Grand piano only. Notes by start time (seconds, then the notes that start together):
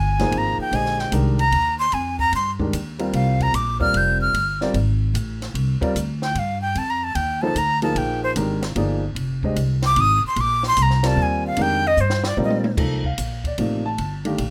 0.19 F3 A#3 D#4 G#4 C5
0.73 D3 G#3 G4 C5 D#5
1.12 D#3 G#3 D4 G4 A#4
2.59 D#3 G#3 D4 G4 A#4
2.99 G3 C4 F4 A#4 F5
3.80 G3 C4 F4 A#4 D5
4.61 G3 C4 F4 A#4 D5
5.81 G3 C4 F4 A#4 D5
7.42 F3 A#3 D#4 A4 C5
7.82 F3 A#3 D#4 G#4 A#4
8.36 D#3 G#3 D4 G4 A#4
8.76 F3 A#3 D#4 G#4 D5
9.44 G#3 D4 G4 C5 D#5
11.03 G3 C4 F4 A#4 D5
11.57 D#3 G#3 D4 G4 A#4
12.37 G3 C4 F4 A#4 D5
12.77 F3 A#3 D#4 A4
13.06 F5
13.47 D5
13.59 C3 F3 A#3 D#4
13.86 A5
14.25 D#3 A3 D4 G4 F5